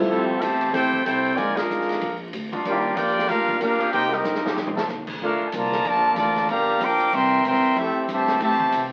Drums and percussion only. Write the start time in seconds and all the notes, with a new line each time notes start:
0.41 hi-hat pedal, ride
0.61 ride
0.74 snare, ride
0.93 kick
1.06 hi-hat pedal, ride
1.25 ride
1.38 ride
1.57 snare, ride
1.70 hi-hat pedal
1.80 snare
1.89 snare, ride
2.01 ride
2.33 hi-hat pedal, ride
2.53 kick, ride
2.65 ride
2.97 hi-hat pedal, ride
3.08 snare
3.18 snare
3.29 snare, ride
3.49 kick
3.61 hi-hat pedal, ride
3.80 ride
3.93 ride
4.12 snare
4.24 snare, hi-hat pedal
4.34 snare
4.46 snare
4.56 snare
4.67 mid tom
4.77 snare
4.88 snare, hi-hat pedal
5.07 kick, crash
5.52 hi-hat pedal, ride
5.72 snare
5.85 ride
6.16 hi-hat pedal, ride
6.36 snare, ride
6.49 ride
6.81 hi-hat pedal, ride
7.00 ride
7.13 ride
7.45 hi-hat pedal, ride
7.64 ride
7.77 ride
8.09 hi-hat pedal, ride
8.28 snare, ride
8.40 ride
8.60 kick
8.72 hi-hat pedal, ride